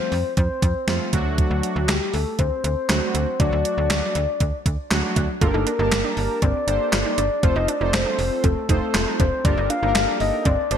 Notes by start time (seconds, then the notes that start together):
Already playing: F3 A3 C4 F4 C5
0.12 F2, open hi-hat
0.37 F2 C5, kick, closed hi-hat
0.62 F2, kick, closed hi-hat
0.88 F2 F3 A3 C4 F4, snare, closed hi-hat
1.13 D2 F#3 A3 D4 F#4, kick, closed hi-hat
1.38 kick, closed hi-hat
1.51 D2
1.63 closed hi-hat
1.76 D2
1.88 D2 G4, snare, clap, closed hi-hat
2.14 D2 A4, open hi-hat
2.39 D2 C5, kick, closed hi-hat
2.64 D2, closed hi-hat
2.89 D2 F#3 A3 D4 F#4, snare, clap, closed hi-hat
3.15 D2, closed hi-hat
3.40 D2 F#3 A3 D4 F#4 D5, kick, closed hi-hat
3.52 D2
3.65 closed hi-hat
3.78 D2
3.90 D2, snare, clap, closed hi-hat
4.15 D2, closed hi-hat
4.40 D2, kick, closed hi-hat
4.66 D2, kick, closed hi-hat
4.91 D2 F#3 A3 D4 F#4, snare, clap, closed hi-hat
5.16 D2, kick, closed hi-hat
5.41 G1 A#3 D4 F4 G4 A4 A#4, kick, closed hi-hat
5.48 A#4
5.54 G1 D#4 A4
5.67 D4 A#4, closed hi-hat
5.79 G1 A#3 D4 D#4 G4 A#4 A5
5.92 G1, snare, clap, closed hi-hat
6.04 D4
6.17 G1, open hi-hat
6.42 G1 C4 D5, kick, closed hi-hat
6.68 G1 A#3 D4 G4 A4 C5, closed hi-hat
6.93 G1 F4 D5, snare, clap, closed hi-hat
7.05 D#4
7.18 G1 D4, closed hi-hat
7.43 F1 A3 C4 F4 A4 C5, kick, closed hi-hat
7.56 F1 D#4 D#5
7.68 D4 D5, closed hi-hat
7.81 F1 A3 C4 D#4 F4 A4 C5
7.93 F1 C5, snare, clap, closed hi-hat
8.06 D4
8.19 F1, open hi-hat
8.44 F1 C4 A4, kick, closed hi-hat
8.69 F1 A3 C4 D#4 F4 A4 C5, kick, closed hi-hat
8.94 F1 F4, snare, clap, closed hi-hat
9.07 D#4
9.20 F1 D4 C5, kick, closed hi-hat
9.45 G1 A#3 D4 F4 G4 A4 A#4 D5, kick, closed hi-hat
9.58 G1 D#4
9.70 D4 F5, closed hi-hat
9.83 G1 A#3 D4 D#4 G4 A4 A#4
9.95 G1, snare, clap, closed hi-hat
10.08 D4
10.20 G1 D#5, open hi-hat
10.45 G1 C4 D5, kick, closed hi-hat
10.71 G1 A#3 D4 G4 A4 C5, closed hi-hat